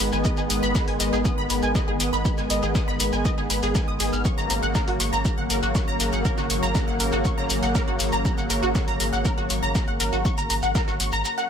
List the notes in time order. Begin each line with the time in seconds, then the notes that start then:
Already playing: D#3 G#3 B3
0.00 G#1 B5, open hi-hat
0.12 G#1 G#5 G#6, shekere
0.24 D#5 D#6, kick, shekere, shaker
0.37 G#1 G#4 G#5, shekere
0.50 G#1 D#6, open hi-hat, shaker, shekere
0.63 G#1 B5, shekere
0.75 B5, kick, snare, shaker, shekere
0.88 G#1 G#5 G#6, closed hi-hat
1.00 G#1 D#5 D#6, open hi-hat, shekere, shaker
1.13 G#1 G#4 G#5, shekere
1.25 D#6, kick, shekere, shaker
1.38 G#1 B5
1.50 G#1 B5, open hi-hat, shekere, shaker
1.62 G#1 G#5 G#6, shekere
1.75 D#5 D#6, kick, snare, shaker, shekere
1.88 G#1 G#4 G#5
2.00 G#1 D#6, open hi-hat, shaker, shekere
2.13 G#1 B5, shekere
2.25 B5, kick, shekere, shaker
2.37 G#1 G#5 G#6, snare, shekere
2.50 G#1 D#5 D#6, open hi-hat, shaker, shekere
2.63 G#1 G#4 G#5, shekere
2.75 D#6, kick, snare, shekere, shaker
2.88 G#1 B5, snare
3.00 G#1 B5, open hi-hat, shekere, shaker
3.13 G#1 G#5 G#6, snare, shekere
3.25 D#5 D#6, kick, shaker, shekere
3.38 G#1 G#4 G#5, snare
3.50 G#1 B5, open hi-hat, shaker, shekere
3.63 G#1 G#4 G#5, closed hi-hat, shekere
3.75 G#5 G#6, kick, snare, shekere, shaker
3.88 G#1 D#6
4.00 G#1 G#4 G#5, open hi-hat, shekere
4.13 G#1 F6, shekere
4.25 C#3 F#3 A#3 C#6, kick, shekere, shaker
4.38 G#1 A#5 A#6, shekere
4.50 G#1 A#5 A#6, open hi-hat, shaker, shekere
4.62 G#1 F#5 F#6, shekere
4.75 A#4 A#5, kick, snare, shekere, shaker
4.88 G#1 F#4 F#5, closed hi-hat
5.00 G#1 C#6, open hi-hat, shaker, shekere
5.13 G#1 A#5 A#6, shekere
5.25 A#5 A#6, kick, shaker, shekere
5.38 G#1 F#5 F#6
5.50 G#1 A#4 A#5, open hi-hat, shaker, shekere
5.63 G#1 F#4 F#5, shekere
5.75 C#6, kick, snare, shaker, shekere
5.88 G#1 A#5 A#6
6.00 G#1 A#5 A#6, open hi-hat, shaker, shekere
6.12 G#1 F#5 F#6, shekere
6.25 A#4 A#5, kick, shaker, shekere
6.38 G#1 F#4 F#5, snare, shekere
6.50 G#1 C#6, open hi-hat, shaker, shekere
6.63 G#1 A#5 A#6, shekere
6.75 A#5 A#6, kick, snare, shekere, shaker
6.88 G#1 F#5 F#6, snare
7.00 G#1 A#4 A#5, open hi-hat, shekere, shaker
7.12 G#1 F#4 F#5, snare, shekere
7.25 C#6, kick, shekere, shaker
7.38 G#1 A#5 A#6, snare
7.50 G#1 A#5 A#6, open hi-hat, shekere, shaker
7.63 G#1 F#5 F#6, closed hi-hat, shekere
7.75 A#4 A#5, kick, snare, shaker, shekere
7.88 G#1 F#4 F#5
7.99 G#1 C#6, open hi-hat, shekere
8.12 G#1 A#5 A#6, shekere
8.25 A#5 A#6, kick, shaker, shekere
8.38 G#1 F#5 F#6, shekere
8.50 G#1 A#4 A#5, open hi-hat, shekere, shaker
8.63 G#1 F#4 F#5, shekere
8.75 C#6, kick, snare, shaker, shekere
8.88 G#1 A#5 A#6, closed hi-hat
9.00 G#1 A#5 A#6, open hi-hat, shaker, shekere
9.13 G#1 F#5 F#6, shekere
9.25 A#4 A#5, kick, shekere, shaker
9.38 G#1 F#4 F#5
9.50 G#1 C#6, open hi-hat, shekere, shaker
9.63 G#1 A#5 A#6, shekere
9.75 A#5 A#6, kick, snare, shekere, shaker
9.88 G#1 F#5 F#6
10.00 G#1 A#4 A#5, open hi-hat, shaker, shekere
10.13 G#1 F#4 F#5, shekere
10.25 C#6, kick, shaker, shekere
10.37 G#1 A#5 A#6, shekere, shaker
10.50 G#1 A#5 A#6, open hi-hat, shekere
10.63 G#1 F#5 F#6, shekere, shaker
10.75 A#4 A#5, kick, snare, shaker, shekere
10.88 G#1 F#4 F#5, snare, shekere
11.00 G#1 C#6, open hi-hat, shaker, shekere
11.12 G#1 A#5 A#6, shekere
11.25 A#5 A#6, shekere, shaker
11.38 F#5 F#6, snare, shekere